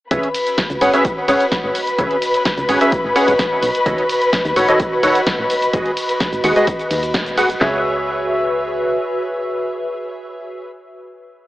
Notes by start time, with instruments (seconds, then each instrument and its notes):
0.11 fm bass C#2, synth stab C#4 G#4 B4 C#5 E5, ambient pad F#4, string section B4 B5, kick, closed hi-hat, shaker
0.23 closed hi-hat
0.34 open hi-hat, ride, shaker
0.47 ambient pad B4, closed hi-hat, shaker
0.58 kick, snare, closed hi-hat, shaker
0.70 fm bass C#2, closed hi-hat, shaker
0.81 fm bass G#1, synth stab C#4 G#4 B4 C#5 F#5, ambient pad D#5, open hi-hat, ride, shaker
0.93 synth stab C#4 G#4 B4 C#5 E5, closed hi-hat, shaker
1.05 kick, closed hi-hat, shaker
1.28 fm bass G#1, synth stab C#4 G#4 B4 C#5 F#5, open hi-hat, ride, shaker
1.40 closed hi-hat, shaker
1.52 kick, snare, closed hi-hat, shaker
1.64 fm bass G#1
1.75 open hi-hat, ride, shaker
1.87 closed hi-hat, shaker
1.99 fm bass C#2, synth stab C#4 G#4 B4 C#5 E5, kick, closed hi-hat, shaker
2.11 closed hi-hat
2.22 open hi-hat, ride, shaker
2.34 closed hi-hat, shaker
2.45 kick, snare, closed hi-hat, shaker
2.58 fm bass C#2, closed hi-hat, shaker
2.69 fm bass G#1, synth stab C#4 G#4 B4 C#5 F#5, open hi-hat, ride, shaker
2.81 synth stab C#4 G#4 B4 C#5 E5, closed hi-hat, shaker
2.92 kick, closed hi-hat, shaker
3.04 fm bass G#1
3.16 synth stab C#4 G#4 B4 C#5 F#5, open hi-hat, ride, shaker
3.28 fm bass G#1, closed hi-hat, shaker
3.39 kick, snare, closed hi-hat, shaker
3.62 fm bass B1, open hi-hat, ride, shaker
3.75 closed hi-hat, shaker
3.86 fm bass D#2, synth stab D#3 F#4 A4 C#5 D#5, kick, closed hi-hat, shaker
3.98 closed hi-hat
4.09 open hi-hat, ride, shaker
4.22 closed hi-hat, shaker
4.33 kick, snare, closed hi-hat, shaker
4.45 fm bass D#2, closed hi-hat, shaker
4.56 fm bass A1, synth stab D#3 F#4 A4 C#5 F#5, open hi-hat, ride, shaker
4.68 synth stab D#3 F#4 A4 C#5 D#5, closed hi-hat, shaker
4.80 kick, closed hi-hat, shaker
5.03 fm bass D#1, synth stab D#3 F#4 A4 C#5 F#5, open hi-hat, ride, shaker
5.15 closed hi-hat, shaker
5.26 kick, snare, closed hi-hat, shaker
5.39 fm bass A1
5.50 open hi-hat, ride, shaker
5.62 closed hi-hat, shaker
5.73 fm bass G#1, synth stab G#3 F#4 G#4 B4 D#5, kick, closed hi-hat, shaker
5.86 closed hi-hat
5.97 open hi-hat, ride, shaker
6.09 closed hi-hat, shaker
6.20 kick, snare, closed hi-hat, shaker
6.33 fm bass G#1, closed hi-hat, shaker
6.44 fm bass D#2, synth stab G#3 F#4 G#4 B4 F#5, open hi-hat, ride, shaker
6.56 synth stab G#3 F#4 G#4 B4 D#5, closed hi-hat, shaker
6.67 kick, closed hi-hat, shaker
6.79 closed hi-hat, shaker
6.91 fm bass D#2, open hi-hat, ride, shaker
7.03 closed hi-hat, shaker
7.14 fm bass B1, kick, snare, closed hi-hat, shaker
7.26 closed hi-hat, shaker
7.37 synth stab F#4 G#4 B4 F#5, open hi-hat, ride, shaker
7.50 closed hi-hat, shaker
7.61 fm bass C#2, ambient pad F#4, synth stab G#4 B4 C#5 E5, snare, clap, floor tom
7.68 ambient pad B4
7.76 ambient pad E5